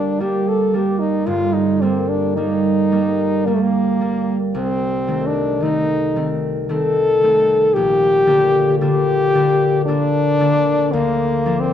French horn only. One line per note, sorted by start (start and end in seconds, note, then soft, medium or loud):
0.00 0.22 D4 medium
0.21 0.50 G4 medium
0.49 0.77 A4 medium
0.75 1.01 G4 medium
0.99 1.28 D#4 medium
1.26 1.55 F4 medium
1.53 1.83 D#4 medium
1.82 2.10 C4 medium
2.09 2.36 D4 medium
2.36 3.48 D#4 medium
3.46 3.56 A#3 medium
3.54 3.63 A3 medium
3.62 4.37 A#3 medium
4.54 5.28 C4 medium
5.27 5.64 D4 medium
5.63 6.40 D#4 medium
6.69 7.75 A4 loud
7.74 8.79 G4 loud
8.79 9.85 G4 medium
9.86 10.93 D4 loud
10.92 11.61 A#3 medium
11.60 11.73 C4 medium